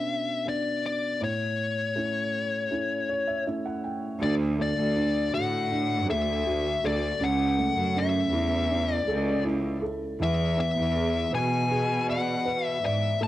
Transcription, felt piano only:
0.00 1.17 B2 medium
0.00 0.45 B3 soft
0.00 1.23 C#4 soft
0.00 0.46 D4 soft
0.45 1.18 B3 soft
0.45 1.19 D4 soft
1.21 4.17 A2 medium
1.95 2.68 A3 soft
1.95 2.69 C#4 soft
1.95 2.69 E4 soft
2.70 3.43 A3 soft
2.70 3.44 C#4 soft
2.70 3.44 E4 soft
3.09 3.26 C#5 medium
3.27 3.45 E5 soft
3.47 4.19 A3 soft
3.47 4.19 C#4 soft
3.47 4.19 E4 soft
3.47 3.64 E5 medium
3.65 3.83 F#5 medium
3.84 4.19 G5 soft
4.21 7.17 D3 medium
4.59 6.05 A3 soft
4.96 5.70 D4 medium
5.33 6.45 F#4 medium
5.71 7.17 D4 medium
6.09 6.82 A4 medium
6.46 7.19 F#4 soft
6.84 7.20 A4 medium
7.21 10.17 C#3 medium
7.58 9.04 A3 medium
7.96 8.69 C#4 medium
8.33 9.43 E4 medium
8.70 10.17 C#4 medium
9.07 9.81 A4 medium
9.45 10.18 E4 medium
9.82 10.19 A4 medium
10.20 13.16 E3 medium
10.57 12.04 B3 medium
10.95 11.69 G#4 medium
11.33 12.44 B4 medium
11.71 13.17 G#4 medium
12.08 12.82 D5 medium
12.45 13.18 B4 medium
12.83 13.20 D5 medium
13.21 13.28 A3 medium

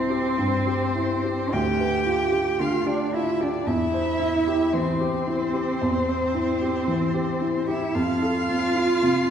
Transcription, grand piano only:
0.00 1.48 C2 soft
0.00 0.27 E4 soft
0.00 1.55 C5 soft
0.10 0.54 G4 soft
0.38 0.84 G2 soft
0.67 1.13 G4 soft
0.95 1.41 E4 soft
1.24 1.52 G4 soft
1.53 3.64 D2 soft
1.80 2.23 B4 soft
2.06 2.49 F4 soft
2.32 2.76 G4 soft
2.60 3.03 D3 soft
2.86 3.30 G4 soft
3.13 3.57 F4 soft
3.40 3.67 G4 soft
3.67 5.78 E2 soft
3.94 4.37 C5 soft
4.20 4.64 E4 soft
4.47 4.91 G4 soft
4.74 5.17 E3 soft
5.00 5.44 G4 soft
5.27 5.71 E4 soft
5.53 5.97 G4 soft
5.81 7.91 E2 soft
6.09 6.51 C5 soft
6.34 6.78 E4 soft
6.62 7.04 G4 soft
6.88 7.31 E3 soft
7.14 7.58 G4 soft
7.41 7.84 E4 soft
7.68 7.95 G4 soft
7.95 9.30 F2 soft
8.22 8.65 A4 soft
8.49 8.91 C4 soft
8.75 9.18 F4 soft
9.02 9.30 C3 soft

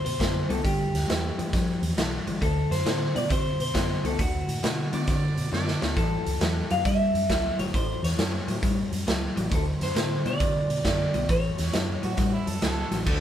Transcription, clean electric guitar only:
0.05 0.46 C5 medium
0.50 0.64 A4 medium
0.64 1.93 G4 medium
2.43 2.73 A4 medium
2.71 3.16 C5 medium
3.16 3.31 D5 medium
3.32 3.59 C5 loud
3.62 4.07 C5 medium
4.06 4.20 A4 medium
4.20 5.49 F#4 medium
5.97 6.73 A4 medium
6.71 6.85 F5 medium
6.86 7.59 E5 medium
7.59 7.73 C#5 medium
7.75 8.04 C5 medium
8.04 8.89 C#5 medium
9.55 9.62 A4 medium
9.83 10.27 C5 medium
10.27 10.86 D5 medium
10.87 11.27 D5 medium
11.30 12.59 C#5 medium

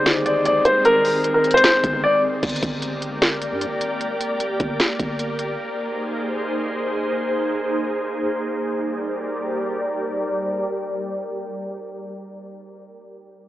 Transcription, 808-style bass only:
0.00 0.61 G1 loud
1.84 2.03 G1 loud
2.43 2.62 G1 loud
2.63 3.53 G1 loud
3.51 3.68 G2 loud
3.66 3.80 G1 medium
4.60 4.79 G1 loud
5.00 5.56 G1 loud

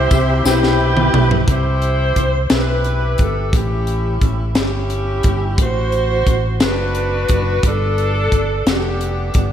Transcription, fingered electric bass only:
0.11 0.43 C2 medium
0.45 1.09 B1 medium
1.13 1.45 B1 medium
1.47 2.12 C2 loud
2.16 2.47 C2 medium
2.50 3.15 B1 medium
3.19 3.50 G1 medium
3.53 4.17 A1 loud
4.22 4.53 A1 medium
4.55 5.20 G1 medium
5.24 5.56 G1 medium
5.58 6.22 A1 loud
6.26 6.58 A1 medium
6.60 7.25 F#1 medium
7.29 7.61 F#1 medium
7.63 8.28 G1 medium
8.32 8.64 G1 medium
8.66 9.30 F1 medium
9.35 9.53 G1 medium

